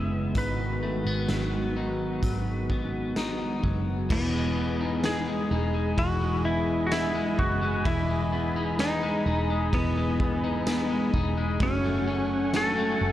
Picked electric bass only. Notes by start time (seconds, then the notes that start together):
Already playing: F#1
0.35 G#1
1.05 G#1
1.29 G#1
2.23 G#1
3.64 F#1
4.10 E1
5.51 E1
5.98 E1
7.39 F#1
7.85 E1
9.26 E1
9.73 E1
11.14 E1
11.60 F#1
13.01 F#1